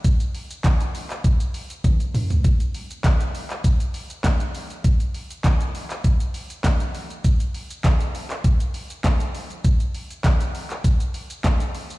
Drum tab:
HH |xxoxxxoxxxoxxxox|xxoxxxoxxxoxxxox|xxoxxxoxxxoxxxox|xxoxxxoxxxoxxxox|
SH |xxxxxxxxxxxxxxxx|xxxxxxxxxxxxxxxx|xxxxxxxxxxxxxxxx|xxxxxxxxxxxxxxxx|
CP |----x--x--------|----x--x----x---|----x--x----x---|----x--x----x---|
SD |----o-----------|----o-------o---|----o-------o---|----o-------o---|
T1 |------------o---|----------------|----------------|----------------|
T2 |--------------o-|----------------|----------------|----------------|
FT |---------------o|----------------|----------------|----------------|
BD |o---o---o---o---|o---o---o---o---|o---o---o---o---|o---o---o---o---|

HH |xxoxxxoxxxoxxxox|
SH |xxxxxxxxxxxxxxxx|
CP |----x--x----x---|
SD |----o-------o---|
T1 |----------------|
T2 |----------------|
FT |----------------|
BD |o---o---o---o---|